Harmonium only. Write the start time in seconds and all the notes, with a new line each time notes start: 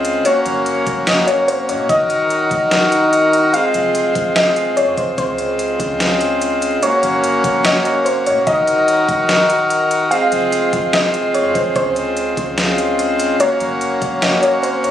Already playing: C#3 G#3 C4 F4
0.25 A#3 C#4 F#4
1.90 D#3 D#4 F#4 A#4
3.54 G#3 C4 F4
5.18 C#3 G#3
6.82 A#3 C#4 F#4
8.47 D#3 D#4 F#4 A#4
10.11 G#3 C4 F4
11.76 C#3
13.40 A#3 C#4 F#4